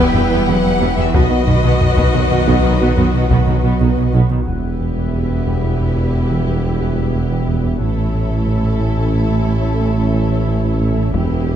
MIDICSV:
0, 0, Header, 1, 12, 480
1, 0, Start_track
1, 0, Tempo, 666667
1, 822, Time_signature, 5, 2, 24, 8
1, 8322, End_track
2, 0, Start_track
2, 0, Title_t, "Violin section"
2, 0, Program_c, 0, 48
2, 0, Note_on_c, 0, 79, 88
2, 332, Note_off_c, 0, 79, 0
2, 339, Note_on_c, 0, 78, 93
2, 700, Note_off_c, 0, 78, 0
2, 705, Note_on_c, 0, 76, 82
2, 822, Note_on_c, 0, 75, 101
2, 824, Note_off_c, 0, 76, 0
2, 2953, Note_off_c, 0, 75, 0
2, 3224, Note_on_c, 0, 71, 44
2, 5594, Note_off_c, 0, 71, 0
2, 5622, Note_on_c, 0, 73, 50
2, 7993, Note_off_c, 0, 73, 0
2, 8026, Note_on_c, 0, 71, 65
2, 8322, Note_off_c, 0, 71, 0
2, 8322, End_track
3, 0, Start_track
3, 0, Title_t, "Violin section"
3, 0, Program_c, 1, 48
3, 0, Note_on_c, 1, 67, 88
3, 0, Note_on_c, 1, 71, 93
3, 792, Note_off_c, 1, 67, 0
3, 809, Note_off_c, 1, 71, 0
3, 818, Note_on_c, 1, 71, 66
3, 819, Note_on_c, 1, 66, 66
3, 3047, Note_off_c, 1, 71, 0
3, 3076, Note_off_c, 1, 66, 0
3, 3220, Note_on_c, 1, 67, 50
3, 5592, Note_off_c, 1, 67, 0
3, 5620, Note_on_c, 1, 69, 54
3, 8021, Note_off_c, 1, 69, 0
3, 8023, Note_on_c, 1, 67, 62
3, 8322, Note_off_c, 1, 67, 0
3, 8322, End_track
4, 0, Start_track
4, 0, Title_t, "Analog synth pad"
4, 0, Program_c, 2, 89
4, 0, Note_on_c, 2, 52, 74
4, 0, Note_on_c, 2, 59, 80
4, 0, Note_on_c, 2, 71, 84
4, 0, Note_on_c, 2, 76, 88
4, 815, Note_off_c, 2, 59, 0
4, 815, Note_off_c, 2, 71, 0
4, 822, Note_off_c, 2, 52, 0
4, 822, Note_off_c, 2, 76, 0
4, 823, Note_on_c, 2, 54, 73
4, 823, Note_on_c, 2, 78, 74
4, 824, Note_on_c, 2, 59, 77
4, 824, Note_on_c, 2, 71, 83
4, 3194, Note_off_c, 2, 59, 0
4, 3194, Note_off_c, 2, 71, 0
4, 3222, Note_off_c, 2, 78, 0
4, 3222, Note_on_c, 2, 76, 59
4, 3223, Note_off_c, 2, 54, 0
4, 3223, Note_on_c, 2, 71, 51
4, 3224, Note_on_c, 2, 55, 56
4, 3224, Note_on_c, 2, 59, 55
4, 5593, Note_off_c, 2, 76, 0
4, 5594, Note_off_c, 2, 55, 0
4, 5594, Note_off_c, 2, 59, 0
4, 5594, Note_off_c, 2, 71, 0
4, 5617, Note_on_c, 2, 61, 59
4, 5619, Note_on_c, 2, 52, 57
4, 5619, Note_on_c, 2, 76, 54
4, 5621, Note_on_c, 2, 69, 56
4, 7991, Note_off_c, 2, 76, 0
4, 8015, Note_off_c, 2, 52, 0
4, 8019, Note_off_c, 2, 61, 0
4, 8021, Note_off_c, 2, 69, 0
4, 8023, Note_on_c, 2, 52, 62
4, 8023, Note_on_c, 2, 59, 63
4, 8023, Note_on_c, 2, 67, 65
4, 8023, Note_on_c, 2, 76, 64
4, 8322, Note_off_c, 2, 52, 0
4, 8322, Note_off_c, 2, 59, 0
4, 8322, Note_off_c, 2, 67, 0
4, 8322, Note_off_c, 2, 76, 0
4, 8322, End_track
5, 0, Start_track
5, 0, Title_t, "French horn section"
5, 0, Program_c, 3, 60
5, 0, Note_on_c, 3, 59, 72
5, 0, Note_on_c, 3, 71, 76
5, 707, Note_off_c, 3, 71, 0
5, 830, Note_on_c, 3, 71, 58
5, 1272, Note_off_c, 3, 59, 0
5, 1310, Note_on_c, 3, 54, 67
5, 2967, Note_off_c, 3, 71, 0
5, 2995, Note_off_c, 3, 54, 0
5, 3217, Note_on_c, 3, 67, 46
5, 3218, Note_on_c, 3, 59, 44
5, 5591, Note_off_c, 3, 59, 0
5, 5591, Note_off_c, 3, 67, 0
5, 5621, Note_on_c, 3, 64, 54
5, 5623, Note_on_c, 3, 61, 50
5, 7993, Note_off_c, 3, 64, 0
5, 7994, Note_off_c, 3, 61, 0
5, 8022, Note_on_c, 3, 59, 66
5, 8023, Note_on_c, 3, 67, 65
5, 8322, Note_off_c, 3, 59, 0
5, 8322, Note_off_c, 3, 67, 0
5, 8322, End_track
6, 0, Start_track
6, 0, Title_t, "Viola section"
6, 0, Program_c, 4, 48
6, 0, Note_on_c, 4, 59, 82
6, 0, Note_on_c, 4, 64, 95
6, 95, Note_off_c, 4, 59, 0
6, 108, Note_on_c, 4, 52, 57
6, 155, Note_off_c, 4, 52, 0
6, 227, Note_on_c, 4, 59, 79
6, 337, Note_off_c, 4, 59, 0
6, 348, Note_on_c, 4, 52, 64
6, 395, Note_off_c, 4, 52, 0
6, 467, Note_on_c, 4, 55, 52
6, 514, Note_off_c, 4, 55, 0
6, 584, Note_on_c, 4, 59, 77
6, 695, Note_off_c, 4, 59, 0
6, 704, Note_on_c, 4, 52, 56
6, 752, Note_off_c, 4, 52, 0
6, 792, Note_off_c, 4, 64, 0
6, 820, Note_on_c, 4, 66, 71
6, 822, Note_on_c, 4, 59, 68
6, 934, Note_off_c, 4, 59, 0
6, 1063, Note_on_c, 4, 54, 50
6, 1111, Note_off_c, 4, 54, 0
6, 1185, Note_on_c, 4, 59, 76
6, 1295, Note_off_c, 4, 59, 0
6, 1421, Note_on_c, 4, 59, 57
6, 1533, Note_off_c, 4, 59, 0
6, 1544, Note_on_c, 4, 51, 48
6, 1592, Note_off_c, 4, 51, 0
6, 1664, Note_on_c, 4, 54, 48
6, 1712, Note_off_c, 4, 54, 0
6, 1782, Note_on_c, 4, 59, 74
6, 1894, Note_off_c, 4, 59, 0
6, 1909, Note_on_c, 4, 51, 55
6, 1956, Note_off_c, 4, 51, 0
6, 2025, Note_on_c, 4, 59, 71
6, 2135, Note_off_c, 4, 59, 0
6, 2146, Note_on_c, 4, 51, 56
6, 2193, Note_off_c, 4, 51, 0
6, 2385, Note_on_c, 4, 59, 68
6, 2495, Note_off_c, 4, 59, 0
6, 2503, Note_on_c, 4, 51, 55
6, 2551, Note_off_c, 4, 51, 0
6, 2622, Note_on_c, 4, 59, 69
6, 2734, Note_off_c, 4, 59, 0
6, 2743, Note_on_c, 4, 51, 56
6, 2791, Note_off_c, 4, 51, 0
6, 2860, Note_on_c, 4, 54, 53
6, 2909, Note_off_c, 4, 54, 0
6, 2986, Note_on_c, 4, 59, 65
6, 3048, Note_off_c, 4, 66, 0
6, 3096, Note_off_c, 4, 59, 0
6, 3105, Note_on_c, 4, 51, 63
6, 3153, Note_off_c, 4, 51, 0
6, 3224, Note_on_c, 4, 64, 44
6, 5594, Note_off_c, 4, 64, 0
6, 5620, Note_on_c, 4, 64, 56
6, 7992, Note_off_c, 4, 64, 0
6, 8015, Note_on_c, 4, 64, 66
6, 8322, Note_off_c, 4, 64, 0
6, 8322, End_track
7, 0, Start_track
7, 0, Title_t, "Cello section"
7, 0, Program_c, 5, 48
7, 0, Note_on_c, 5, 55, 79
7, 343, Note_off_c, 5, 55, 0
7, 344, Note_on_c, 5, 54, 70
7, 703, Note_off_c, 5, 54, 0
7, 707, Note_on_c, 5, 52, 62
7, 822, Note_off_c, 5, 52, 0
7, 824, Note_on_c, 5, 51, 69
7, 2983, Note_off_c, 5, 51, 0
7, 3227, Note_on_c, 5, 40, 39
7, 5596, Note_off_c, 5, 40, 0
7, 5620, Note_on_c, 5, 45, 46
7, 7992, Note_off_c, 5, 45, 0
7, 8022, Note_on_c, 5, 40, 69
7, 8322, Note_off_c, 5, 40, 0
7, 8322, End_track
8, 0, Start_track
8, 0, Title_t, "Analog synth bass"
8, 0, Program_c, 6, 38
8, 96, Note_on_c, 6, 40, 74
8, 170, Note_off_c, 6, 40, 0
8, 219, Note_on_c, 6, 40, 100
8, 292, Note_off_c, 6, 40, 0
8, 341, Note_on_c, 6, 40, 71
8, 413, Note_off_c, 6, 40, 0
8, 461, Note_on_c, 6, 40, 78
8, 533, Note_off_c, 6, 40, 0
8, 581, Note_on_c, 6, 40, 100
8, 653, Note_off_c, 6, 40, 0
8, 701, Note_on_c, 6, 40, 76
8, 774, Note_off_c, 6, 40, 0
8, 820, Note_on_c, 6, 47, 102
8, 893, Note_off_c, 6, 47, 0
8, 942, Note_on_c, 6, 59, 74
8, 1014, Note_off_c, 6, 59, 0
8, 1061, Note_on_c, 6, 47, 69
8, 1134, Note_off_c, 6, 47, 0
8, 1179, Note_on_c, 6, 47, 97
8, 1252, Note_off_c, 6, 47, 0
8, 1303, Note_on_c, 6, 47, 64
8, 1375, Note_off_c, 6, 47, 0
8, 1423, Note_on_c, 6, 47, 97
8, 1495, Note_off_c, 6, 47, 0
8, 1542, Note_on_c, 6, 47, 69
8, 1614, Note_off_c, 6, 47, 0
8, 1664, Note_on_c, 6, 47, 77
8, 1736, Note_off_c, 6, 47, 0
8, 1786, Note_on_c, 6, 47, 101
8, 1857, Note_off_c, 6, 47, 0
8, 1902, Note_on_c, 6, 59, 63
8, 1974, Note_off_c, 6, 59, 0
8, 2026, Note_on_c, 6, 47, 82
8, 2097, Note_off_c, 6, 47, 0
8, 2144, Note_on_c, 6, 59, 76
8, 2215, Note_off_c, 6, 59, 0
8, 2262, Note_on_c, 6, 47, 68
8, 2334, Note_off_c, 6, 47, 0
8, 2383, Note_on_c, 6, 47, 98
8, 2455, Note_off_c, 6, 47, 0
8, 2501, Note_on_c, 6, 47, 73
8, 2574, Note_off_c, 6, 47, 0
8, 2617, Note_on_c, 6, 47, 97
8, 2691, Note_off_c, 6, 47, 0
8, 2741, Note_on_c, 6, 47, 74
8, 2813, Note_off_c, 6, 47, 0
8, 2861, Note_on_c, 6, 47, 69
8, 2933, Note_off_c, 6, 47, 0
8, 2979, Note_on_c, 6, 47, 92
8, 3052, Note_off_c, 6, 47, 0
8, 3098, Note_on_c, 6, 47, 70
8, 3171, Note_off_c, 6, 47, 0
8, 3218, Note_on_c, 6, 40, 72
8, 3291, Note_off_c, 6, 40, 0
8, 3339, Note_on_c, 6, 40, 44
8, 3412, Note_off_c, 6, 40, 0
8, 3459, Note_on_c, 6, 40, 54
8, 3532, Note_off_c, 6, 40, 0
8, 3581, Note_on_c, 6, 40, 45
8, 3653, Note_off_c, 6, 40, 0
8, 3698, Note_on_c, 6, 40, 66
8, 3772, Note_off_c, 6, 40, 0
8, 3820, Note_on_c, 6, 40, 49
8, 3893, Note_off_c, 6, 40, 0
8, 3936, Note_on_c, 6, 40, 46
8, 4010, Note_off_c, 6, 40, 0
8, 4058, Note_on_c, 6, 40, 53
8, 4131, Note_off_c, 6, 40, 0
8, 4178, Note_on_c, 6, 40, 75
8, 4251, Note_off_c, 6, 40, 0
8, 4298, Note_on_c, 6, 40, 46
8, 4371, Note_off_c, 6, 40, 0
8, 4421, Note_on_c, 6, 40, 47
8, 4494, Note_off_c, 6, 40, 0
8, 4543, Note_on_c, 6, 52, 51
8, 4615, Note_off_c, 6, 52, 0
8, 4664, Note_on_c, 6, 40, 71
8, 4735, Note_off_c, 6, 40, 0
8, 4783, Note_on_c, 6, 40, 51
8, 4855, Note_off_c, 6, 40, 0
8, 4903, Note_on_c, 6, 40, 53
8, 4975, Note_off_c, 6, 40, 0
8, 5021, Note_on_c, 6, 40, 50
8, 5093, Note_off_c, 6, 40, 0
8, 5143, Note_on_c, 6, 40, 70
8, 5214, Note_off_c, 6, 40, 0
8, 5264, Note_on_c, 6, 52, 47
8, 5335, Note_off_c, 6, 52, 0
8, 5384, Note_on_c, 6, 40, 47
8, 5455, Note_off_c, 6, 40, 0
8, 5502, Note_on_c, 6, 40, 47
8, 5574, Note_off_c, 6, 40, 0
8, 5620, Note_on_c, 6, 45, 77
8, 5693, Note_off_c, 6, 45, 0
8, 5742, Note_on_c, 6, 45, 56
8, 5814, Note_off_c, 6, 45, 0
8, 5860, Note_on_c, 6, 45, 54
8, 5932, Note_off_c, 6, 45, 0
8, 5980, Note_on_c, 6, 45, 45
8, 6053, Note_off_c, 6, 45, 0
8, 6101, Note_on_c, 6, 45, 73
8, 6173, Note_off_c, 6, 45, 0
8, 6222, Note_on_c, 6, 45, 50
8, 6294, Note_off_c, 6, 45, 0
8, 6341, Note_on_c, 6, 45, 46
8, 6413, Note_off_c, 6, 45, 0
8, 6463, Note_on_c, 6, 45, 55
8, 6534, Note_off_c, 6, 45, 0
8, 6584, Note_on_c, 6, 45, 72
8, 6655, Note_off_c, 6, 45, 0
8, 6702, Note_on_c, 6, 45, 53
8, 6774, Note_off_c, 6, 45, 0
8, 6821, Note_on_c, 6, 45, 54
8, 6893, Note_off_c, 6, 45, 0
8, 6942, Note_on_c, 6, 57, 56
8, 7014, Note_off_c, 6, 57, 0
8, 7062, Note_on_c, 6, 45, 82
8, 7134, Note_off_c, 6, 45, 0
8, 7182, Note_on_c, 6, 45, 57
8, 7254, Note_off_c, 6, 45, 0
8, 7303, Note_on_c, 6, 45, 55
8, 7375, Note_off_c, 6, 45, 0
8, 7420, Note_on_c, 6, 45, 56
8, 7493, Note_off_c, 6, 45, 0
8, 7542, Note_on_c, 6, 45, 80
8, 7614, Note_off_c, 6, 45, 0
8, 7664, Note_on_c, 6, 57, 55
8, 7736, Note_off_c, 6, 57, 0
8, 7785, Note_on_c, 6, 45, 56
8, 7856, Note_off_c, 6, 45, 0
8, 7905, Note_on_c, 6, 45, 56
8, 7976, Note_off_c, 6, 45, 0
8, 8021, Note_on_c, 6, 40, 86
8, 8093, Note_off_c, 6, 40, 0
8, 8141, Note_on_c, 6, 40, 52
8, 8213, Note_off_c, 6, 40, 0
8, 8260, Note_on_c, 6, 40, 62
8, 8322, Note_off_c, 6, 40, 0
8, 8322, End_track
9, 0, Start_track
9, 0, Title_t, "Double bass section"
9, 0, Program_c, 7, 48
9, 100, Note_on_c, 7, 40, 62
9, 149, Note_off_c, 7, 40, 0
9, 219, Note_on_c, 7, 40, 64
9, 268, Note_off_c, 7, 40, 0
9, 342, Note_on_c, 7, 40, 50
9, 390, Note_off_c, 7, 40, 0
9, 463, Note_on_c, 7, 40, 53
9, 511, Note_off_c, 7, 40, 0
9, 583, Note_on_c, 7, 40, 73
9, 631, Note_off_c, 7, 40, 0
9, 701, Note_on_c, 7, 40, 53
9, 749, Note_off_c, 7, 40, 0
9, 821, Note_on_c, 7, 35, 87
9, 869, Note_off_c, 7, 35, 0
9, 1064, Note_on_c, 7, 35, 58
9, 1112, Note_off_c, 7, 35, 0
9, 1182, Note_on_c, 7, 35, 68
9, 1230, Note_off_c, 7, 35, 0
9, 1422, Note_on_c, 7, 35, 77
9, 1470, Note_off_c, 7, 35, 0
9, 1544, Note_on_c, 7, 35, 52
9, 1591, Note_off_c, 7, 35, 0
9, 1663, Note_on_c, 7, 35, 49
9, 1711, Note_off_c, 7, 35, 0
9, 1782, Note_on_c, 7, 35, 80
9, 1830, Note_off_c, 7, 35, 0
9, 1902, Note_on_c, 7, 35, 47
9, 1950, Note_off_c, 7, 35, 0
9, 2023, Note_on_c, 7, 35, 73
9, 2071, Note_off_c, 7, 35, 0
9, 2142, Note_on_c, 7, 35, 51
9, 2190, Note_off_c, 7, 35, 0
9, 2382, Note_on_c, 7, 35, 73
9, 2430, Note_off_c, 7, 35, 0
9, 2501, Note_on_c, 7, 35, 57
9, 2549, Note_off_c, 7, 35, 0
9, 2619, Note_on_c, 7, 35, 66
9, 2668, Note_off_c, 7, 35, 0
9, 2739, Note_on_c, 7, 35, 49
9, 2787, Note_off_c, 7, 35, 0
9, 2862, Note_on_c, 7, 35, 55
9, 2910, Note_off_c, 7, 35, 0
9, 2981, Note_on_c, 7, 35, 66
9, 3029, Note_off_c, 7, 35, 0
9, 3101, Note_on_c, 7, 35, 49
9, 3149, Note_off_c, 7, 35, 0
9, 3223, Note_on_c, 7, 28, 48
9, 5594, Note_off_c, 7, 28, 0
9, 5621, Note_on_c, 7, 33, 51
9, 7993, Note_off_c, 7, 33, 0
9, 8021, Note_on_c, 7, 28, 67
9, 8322, Note_off_c, 7, 28, 0
9, 8322, End_track
10, 0, Start_track
10, 0, Title_t, "Tuba"
10, 0, Program_c, 8, 58
10, 103, Note_on_c, 8, 28, 57
10, 151, Note_off_c, 8, 28, 0
10, 342, Note_on_c, 8, 28, 63
10, 390, Note_off_c, 8, 28, 0
10, 584, Note_on_c, 8, 28, 72
10, 632, Note_off_c, 8, 28, 0
10, 822, Note_on_c, 8, 35, 69
10, 870, Note_off_c, 8, 35, 0
10, 1066, Note_on_c, 8, 35, 54
10, 1113, Note_off_c, 8, 35, 0
10, 1542, Note_on_c, 8, 35, 57
10, 1590, Note_off_c, 8, 35, 0
10, 1781, Note_on_c, 8, 35, 87
10, 1829, Note_off_c, 8, 35, 0
10, 2022, Note_on_c, 8, 35, 75
10, 2070, Note_off_c, 8, 35, 0
10, 2500, Note_on_c, 8, 35, 50
10, 2548, Note_off_c, 8, 35, 0
10, 2741, Note_on_c, 8, 35, 61
10, 2789, Note_off_c, 8, 35, 0
10, 2978, Note_on_c, 8, 35, 74
10, 3027, Note_off_c, 8, 35, 0
10, 3219, Note_on_c, 8, 28, 41
10, 5592, Note_off_c, 8, 28, 0
10, 5623, Note_on_c, 8, 33, 46
10, 7897, Note_off_c, 8, 33, 0
10, 8020, Note_on_c, 8, 28, 56
10, 8322, Note_off_c, 8, 28, 0
10, 8322, End_track
11, 0, Start_track
11, 0, Title_t, "Sub bass"
11, 0, Program_c, 10, 38
11, 0, Note_on_c, 10, 28, 76
11, 824, Note_on_c, 10, 35, 78
11, 834, Note_off_c, 10, 28, 0
11, 3217, Note_off_c, 10, 35, 0
11, 3221, Note_on_c, 10, 28, 54
11, 5622, Note_on_c, 10, 33, 53
11, 5633, Note_off_c, 10, 28, 0
11, 8019, Note_on_c, 10, 28, 58
11, 8030, Note_off_c, 10, 33, 0
11, 8322, Note_off_c, 10, 28, 0
11, 8322, End_track
12, 0, Start_track
12, 0, Title_t, "Taiko and cinematic ensemble drums"
12, 101, Note_on_c, 9, 43, 62
12, 173, Note_off_c, 9, 43, 0
12, 823, Note_on_c, 9, 41, 102
12, 895, Note_off_c, 9, 41, 0
12, 1061, Note_on_c, 9, 43, 60
12, 1133, Note_off_c, 9, 43, 0
12, 1181, Note_on_c, 9, 41, 72
12, 1253, Note_off_c, 9, 41, 0
12, 1302, Note_on_c, 9, 43, 55
12, 1374, Note_off_c, 9, 43, 0
12, 1423, Note_on_c, 9, 41, 80
12, 1495, Note_off_c, 9, 41, 0
12, 1543, Note_on_c, 9, 43, 61
12, 1615, Note_off_c, 9, 43, 0
12, 1780, Note_on_c, 9, 41, 83
12, 1852, Note_off_c, 9, 41, 0
12, 2140, Note_on_c, 9, 43, 51
12, 2212, Note_off_c, 9, 43, 0
12, 2379, Note_on_c, 9, 41, 83
12, 2451, Note_off_c, 9, 41, 0
12, 2500, Note_on_c, 9, 43, 60
12, 2572, Note_off_c, 9, 43, 0
12, 3221, Note_on_c, 9, 41, 45
12, 3293, Note_off_c, 9, 41, 0
12, 3939, Note_on_c, 9, 41, 30
12, 4011, Note_off_c, 9, 41, 0
12, 8022, Note_on_c, 9, 41, 78
12, 8094, Note_off_c, 9, 41, 0
12, 8322, End_track
0, 0, End_of_file